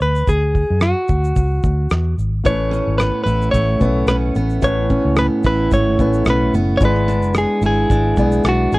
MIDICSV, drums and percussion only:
0, 0, Header, 1, 2, 480
1, 0, Start_track
1, 0, Key_signature, 3, "major"
1, 0, Tempo, 543971
1, 243, Time_signature, 4, 2, 24, 8
1, 7755, End_track
2, 0, Start_track
2, 0, Title_t, "Drums"
2, 10, Note_on_c, 9, 82, 44
2, 98, Note_off_c, 9, 82, 0
2, 139, Note_on_c, 9, 82, 44
2, 227, Note_off_c, 9, 82, 0
2, 244, Note_on_c, 9, 82, 70
2, 245, Note_on_c, 9, 36, 85
2, 333, Note_off_c, 9, 36, 0
2, 333, Note_off_c, 9, 82, 0
2, 485, Note_on_c, 9, 82, 44
2, 486, Note_on_c, 9, 36, 80
2, 573, Note_off_c, 9, 82, 0
2, 575, Note_off_c, 9, 36, 0
2, 713, Note_on_c, 9, 82, 76
2, 717, Note_on_c, 9, 37, 102
2, 801, Note_off_c, 9, 82, 0
2, 806, Note_off_c, 9, 37, 0
2, 956, Note_on_c, 9, 82, 50
2, 965, Note_on_c, 9, 36, 84
2, 1045, Note_off_c, 9, 82, 0
2, 1053, Note_off_c, 9, 36, 0
2, 1099, Note_on_c, 9, 82, 40
2, 1187, Note_off_c, 9, 82, 0
2, 1200, Note_on_c, 9, 82, 72
2, 1204, Note_on_c, 9, 36, 68
2, 1288, Note_off_c, 9, 82, 0
2, 1292, Note_off_c, 9, 36, 0
2, 1440, Note_on_c, 9, 82, 46
2, 1444, Note_on_c, 9, 36, 90
2, 1528, Note_off_c, 9, 82, 0
2, 1533, Note_off_c, 9, 36, 0
2, 1676, Note_on_c, 9, 82, 69
2, 1685, Note_on_c, 9, 37, 106
2, 1764, Note_off_c, 9, 82, 0
2, 1773, Note_off_c, 9, 37, 0
2, 1926, Note_on_c, 9, 82, 44
2, 2015, Note_off_c, 9, 82, 0
2, 2160, Note_on_c, 9, 82, 67
2, 2164, Note_on_c, 9, 36, 95
2, 2249, Note_off_c, 9, 82, 0
2, 2252, Note_off_c, 9, 36, 0
2, 2408, Note_on_c, 9, 82, 44
2, 2497, Note_off_c, 9, 82, 0
2, 2642, Note_on_c, 9, 82, 79
2, 2646, Note_on_c, 9, 37, 108
2, 2730, Note_off_c, 9, 82, 0
2, 2734, Note_off_c, 9, 37, 0
2, 2884, Note_on_c, 9, 82, 48
2, 2972, Note_off_c, 9, 82, 0
2, 3016, Note_on_c, 9, 82, 40
2, 3105, Note_off_c, 9, 82, 0
2, 3122, Note_on_c, 9, 36, 73
2, 3122, Note_on_c, 9, 82, 74
2, 3210, Note_off_c, 9, 36, 0
2, 3211, Note_off_c, 9, 82, 0
2, 3360, Note_on_c, 9, 82, 45
2, 3363, Note_on_c, 9, 36, 79
2, 3448, Note_off_c, 9, 82, 0
2, 3451, Note_off_c, 9, 36, 0
2, 3594, Note_on_c, 9, 82, 63
2, 3602, Note_on_c, 9, 37, 103
2, 3682, Note_off_c, 9, 82, 0
2, 3691, Note_off_c, 9, 37, 0
2, 3841, Note_on_c, 9, 82, 45
2, 3929, Note_off_c, 9, 82, 0
2, 3968, Note_on_c, 9, 82, 43
2, 4056, Note_off_c, 9, 82, 0
2, 4077, Note_on_c, 9, 82, 78
2, 4081, Note_on_c, 9, 36, 96
2, 4165, Note_off_c, 9, 82, 0
2, 4170, Note_off_c, 9, 36, 0
2, 4319, Note_on_c, 9, 82, 47
2, 4324, Note_on_c, 9, 36, 85
2, 4408, Note_off_c, 9, 82, 0
2, 4413, Note_off_c, 9, 36, 0
2, 4554, Note_on_c, 9, 82, 74
2, 4559, Note_on_c, 9, 37, 111
2, 4642, Note_off_c, 9, 82, 0
2, 4647, Note_off_c, 9, 37, 0
2, 4795, Note_on_c, 9, 82, 50
2, 4804, Note_on_c, 9, 36, 89
2, 4883, Note_off_c, 9, 82, 0
2, 4892, Note_off_c, 9, 36, 0
2, 5039, Note_on_c, 9, 82, 76
2, 5043, Note_on_c, 9, 36, 76
2, 5128, Note_off_c, 9, 82, 0
2, 5131, Note_off_c, 9, 36, 0
2, 5284, Note_on_c, 9, 82, 47
2, 5285, Note_on_c, 9, 36, 85
2, 5373, Note_off_c, 9, 36, 0
2, 5373, Note_off_c, 9, 82, 0
2, 5410, Note_on_c, 9, 82, 58
2, 5498, Note_off_c, 9, 82, 0
2, 5515, Note_on_c, 9, 82, 71
2, 5524, Note_on_c, 9, 37, 114
2, 5604, Note_off_c, 9, 82, 0
2, 5613, Note_off_c, 9, 37, 0
2, 5770, Note_on_c, 9, 82, 49
2, 5858, Note_off_c, 9, 82, 0
2, 6005, Note_on_c, 9, 82, 73
2, 6007, Note_on_c, 9, 36, 96
2, 6093, Note_off_c, 9, 82, 0
2, 6095, Note_off_c, 9, 36, 0
2, 6132, Note_on_c, 9, 37, 34
2, 6220, Note_off_c, 9, 37, 0
2, 6251, Note_on_c, 9, 82, 45
2, 6340, Note_off_c, 9, 82, 0
2, 6373, Note_on_c, 9, 82, 46
2, 6462, Note_off_c, 9, 82, 0
2, 6478, Note_on_c, 9, 82, 77
2, 6483, Note_on_c, 9, 37, 116
2, 6567, Note_off_c, 9, 82, 0
2, 6571, Note_off_c, 9, 37, 0
2, 6722, Note_on_c, 9, 82, 52
2, 6810, Note_off_c, 9, 82, 0
2, 6969, Note_on_c, 9, 36, 81
2, 6971, Note_on_c, 9, 82, 69
2, 7057, Note_off_c, 9, 36, 0
2, 7059, Note_off_c, 9, 82, 0
2, 7204, Note_on_c, 9, 82, 51
2, 7210, Note_on_c, 9, 36, 83
2, 7293, Note_off_c, 9, 82, 0
2, 7298, Note_off_c, 9, 36, 0
2, 7337, Note_on_c, 9, 82, 57
2, 7426, Note_off_c, 9, 82, 0
2, 7446, Note_on_c, 9, 82, 66
2, 7455, Note_on_c, 9, 37, 110
2, 7534, Note_off_c, 9, 82, 0
2, 7543, Note_off_c, 9, 37, 0
2, 7694, Note_on_c, 9, 82, 44
2, 7755, Note_off_c, 9, 82, 0
2, 7755, End_track
0, 0, End_of_file